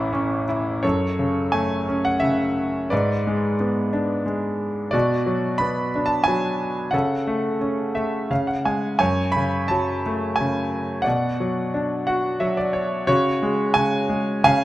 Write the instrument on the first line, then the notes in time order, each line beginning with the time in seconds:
grand piano
Already playing: A1 A2 E3 C#4 E4 C#5 E5 A5
0.13 C#4
0.49 E4
0.83 F#2 A4 C#5
1.19 C#3
1.52 A3 G#5
1.89 C#4
2.05 F#5
2.20 C#3 E5
2.90 G#2 B4 D5
3.27 G#3
3.60 B3
3.93 D4
4.26 G#3
4.91 B2 F#4 D5
5.26 F#3
5.58 B3 B5
5.95 D4
6.06 A5
6.24 G#5
6.28 F#3
6.91 C#3 A4 F#5
7.27 A3
7.61 C#4
7.95 A3 E5
8.30 C#3 F5
8.47 F#5
8.65 G#3 G#5
8.99 F#2 C#5 G#5
9.32 B5
9.36 C#3
9.68 F#3 A5
10.06 A3
10.36 G#5
10.41 C#3
11.02 D5 F#5
11.07 B2
11.40 F#3
11.74 D4
12.07 F#4 F#5
12.40 F#3 E5
12.57 D5
12.73 C#5
13.07 C#3 F#4 C#5
13.43 G#3
13.74 C#3 G#5
14.09 G#3
14.44 C#3 F5 G#5